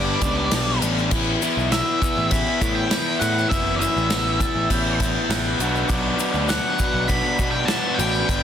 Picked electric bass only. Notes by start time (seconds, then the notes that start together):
Already playing: G1
0.21 C#2
0.52 B1
0.82 A1
1.11 A1
1.57 B1
2.17 A1
2.31 A1
2.61 A2
3.21 A2
3.51 F#1
3.96 A1
4.55 A1
4.70 A1
5.29 A1
5.59 B1
5.89 B1
6.34 D2
6.94 B1
7.09 B1
7.39 B2
7.99 A1
8.29 G1